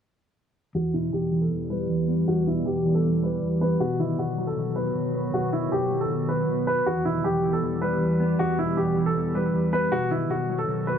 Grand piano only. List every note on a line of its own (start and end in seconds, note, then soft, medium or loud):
0.75 0.93 F#4 loud
0.94 1.12 E4 medium
1.13 1.40 G4 medium
1.41 1.68 A4 medium
1.70 2.24 B4 medium
2.28 2.46 F#4 loud
2.47 2.65 E4 medium
2.66 2.93 G4 medium
2.95 3.22 A4 medium
3.23 3.59 B4 medium
3.61 3.79 B4 medium
3.80 3.98 F#4 loud
4.00 4.18 E4 medium
4.19 4.46 F#4 medium
4.47 4.74 A4 medium
4.76 5.30 B4 medium
5.34 5.52 F#4 medium
5.53 5.71 E4 medium
5.72 5.99 G4 medium
6.01 6.27 A4 medium
6.29 6.65 B4 medium
6.67 6.85 B4 medium
6.86 7.04 F#4 loud
7.05 7.23 E4 medium
7.24 7.51 G4 medium
7.53 7.80 A4 medium
7.82 8.36 B4 medium
8.39 8.57 F#4 loud
8.59 8.76 E4 medium
8.77 9.04 G4 medium
9.06 9.33 A4 medium
9.35 9.71 B4 medium
9.73 9.91 B4 medium
9.92 10.10 F#4 loud
10.11 10.29 E4 medium
10.30 10.57 F#4 medium
10.59 10.86 A4 medium
10.87 10.98 B4 medium